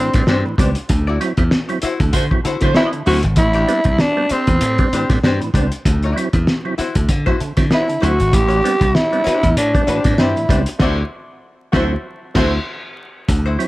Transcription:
Already playing: C4 D4
0.00 E3 G4 C5
0.14 A2 G3 B3 C4 D4, muted hollow-body jazz guitar stroke, kick, snare, closed hi-hat
0.27 G2 C4 D4 G4 C5, snare
0.45 A2 E3, muted hollow-body jazz guitar stroke
0.58 C#2 G3 B3 C4 D4 G4 C5, kick, closed hi-hat
0.75 muted hollow-body jazz guitar stroke, closed hi-hat
0.89 D2 D3, muted hollow-body jazz guitar stroke, kick, closed hi-hat
1.07 E4 F#4 D5
1.20 F#3 C4 E4, muted hollow-body jazz guitar stroke, closed hi-hat
1.37 E2 C4 E4, muted hollow-body jazz guitar stroke, kick, closed hi-hat
1.51 snare
1.69 F#3 C4 E4, muted hollow-body jazz guitar stroke, closed hi-hat
1.82 E4 F#4 C5, muted slap bass stroke, closed hi-hat
2.00 D2 D3, kick, closed hi-hat
2.13 D3 A3 F#4 C5, kick, closed hi-hat
2.31 F#3 C4 E4, muted hollow-body jazz guitar stroke, kick
2.44 D3 E4 F#4 C5, muted slap bass stroke, closed hi-hat
2.61 D3 F#3 A3 C4 E4 F#4 C5, muted hollow-body jazz guitar stroke, kick, snare, closed hi-hat
2.75 C4 E4 F#4 C5, snare
2.93 D3, muted hollow-body jazz guitar stroke, closed hi-hat
3.06 D2 F#3 C4 E4 F#4 C5, open hi-hat
3.23 G#1, muted hollow-body jazz guitar stroke, closed hi-hat
3.36 A1 A2 E3 E4, muted hollow-body jazz guitar stroke, kick, closed hi-hat
3.53 D4 G4 D5, closed hi-hat
3.68 G3 B3 C4 D4, muted hollow-body jazz guitar stroke, closed hi-hat
3.84 C2 C4 D4, muted hollow-body jazz guitar stroke, kick, closed hi-hat
3.99 D4, snare
4.16 G3 B3 C4 D4, muted hollow-body jazz guitar stroke
4.29 C4 D4 G4 C5, muted slap bass stroke, closed hi-hat
4.47 E2 A2 E3, muted hollow-body jazz guitar stroke, kick, closed hi-hat
4.61 A2, closed hi-hat
4.78 G3 B3 C4 D4, muted hollow-body jazz guitar stroke, kick, closed hi-hat
4.93 A2 E3 D4 G4 C5, muted slap bass stroke, closed hi-hat
5.10 A2 G3 B3 C4 D4, muted hollow-body jazz guitar stroke, kick, snare, closed hi-hat
5.23 G2 C4 D4 G4 C5, snare
5.41 A2 E3, muted hollow-body jazz guitar stroke, closed hi-hat
5.54 C#2 G3 B3 C4 D4 G4 C5, kick, closed hi-hat
5.72 muted hollow-body jazz guitar stroke, closed hi-hat
5.85 D2 D3, muted hollow-body jazz guitar stroke, kick, closed hi-hat
6.03 E4 F#4 D5, closed hi-hat
6.16 F#3 C4 E4, muted hollow-body jazz guitar stroke, closed hi-hat
6.33 E2 C4 E4, muted hollow-body jazz guitar stroke, kick, closed hi-hat
6.47 snare
6.65 F#3 C4 E4, muted hollow-body jazz guitar stroke
6.78 E4 F#4 C5, muted slap bass stroke, snare, closed hi-hat
6.95 D2 D3, muted hollow-body jazz guitar stroke, kick, closed hi-hat
7.09 D3, muted hollow-body jazz guitar stroke, kick, closed hi-hat
7.26 F#3 C4 E4 F#4 C5, kick
7.40 D3, muted slap bass stroke, muted hollow-body jazz guitar stroke, closed hi-hat
7.57 D3 F#3 C4 E4, muted hollow-body jazz guitar stroke, kick, snare, closed hi-hat
7.71 C4 E4 F#4 C5, snare
7.88 D3, muted hollow-body jazz guitar stroke, closed hi-hat
8.00 D2 F#3 C4 E4 F#4 C5, closed hi-hat
8.04 F#4
8.19 G#1, muted hollow-body jazz guitar stroke, closed hi-hat
8.31 A1 A2 E3 G4, muted hollow-body jazz guitar stroke, kick, closed hi-hat
8.48 D4 G4 D5, closed hi-hat
8.62 G3 B3 C4 D4, muted hollow-body jazz guitar stroke, closed hi-hat
8.79 C2 C4 D4, muted hollow-body jazz guitar stroke, kick, closed hi-hat
8.95 E4, snare
9.11 G3 B3 C4 D4, muted hollow-body jazz guitar stroke, closed hi-hat
9.24 D4 G4 C5, muted slap bass stroke, snare, closed hi-hat
9.41 E2 A2 E3, muted hollow-body jazz guitar stroke, kick, closed hi-hat
9.57 A2 D4, closed hi-hat
9.74 G3 B3 C4 D4, muted hollow-body jazz guitar stroke, kick, closed hi-hat
9.87 A2 E3 D4 G4 C5, muted slap bass stroke, closed hi-hat
10.04 A2 G3 B3 C4 D4, muted hollow-body jazz guitar stroke, kick, snare, closed hi-hat
10.18 G2 C4 D4 E4 G4 C5, snare
10.36 A2 E3, muted hollow-body jazz guitar stroke, closed hi-hat
10.49 C#2 G3 B3 C4 D4 G4 C5, kick, closed hi-hat
10.66 muted hollow-body jazz guitar stroke, closed hi-hat
10.79 D2 A3 E4 F#4 C5 D5, kick, snare, crash
11.72 D2 F#3 A3 C4 E4 F#4 C5, kick, snare
12.35 D2 A3 E4 F#4 C5, kick, snare, crash
13.28 D2 D3, muted hollow-body jazz guitar stroke, kick, closed hi-hat
13.46 E4 F#4 C5
13.59 F#3 C4 E4, muted hollow-body jazz guitar stroke, closed hi-hat

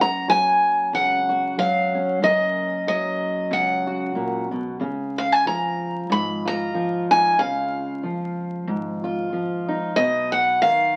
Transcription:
Already playing: F#1 F#2 C#4
0.01 A#5
0.28 F#3 G#5
0.93 C#2 C#3 F#5
1.29 F#4
1.58 F#3 F5
1.95 C#4
2.22 F#1 F#2 D#5
2.87 F#3 D#5
3.51 C#2 C#3 F#5
3.87 F#4
4.15 A#2
4.51 B2
4.80 C#2 C#3
5.18 F5
5.32 G#5
5.45 F3 A#5
6.10 G#1 G#2 B5
6.45 F4 A#5
6.74 F3
7.11 D#4 G#5
7.38 C#2 C#3 F5
8.03 F3
8.68 G#1 G#2
9.04 F4
9.33 F3
9.68 D#4
9.96 B1 B2 D#5
10.32 F#5
10.62 D#3 F5

